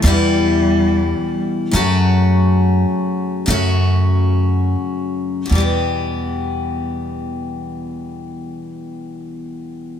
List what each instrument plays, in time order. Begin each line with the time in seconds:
0.02 steel-string acoustic guitar E2 B2 E3 G3 B3, upright bass E2, cello G3
0.07 steel-string acoustic guitar E4
1.71 steel-string acoustic guitar F#2 C#3 F#3 A3, upright bass F#2
1.76 steel-string acoustic guitar C#4 F#4
3.46 steel-string acoustic guitar F#2 C#3 F#3 A3, upright bass F#2
3.50 steel-string acoustic guitar C#4 F#4
5.46 steel-string acoustic guitar E2 B2
5.51 upright bass E2, steel-string acoustic guitar E3
5.55 steel-string acoustic guitar G3 B3
5.60 steel-string acoustic guitar G4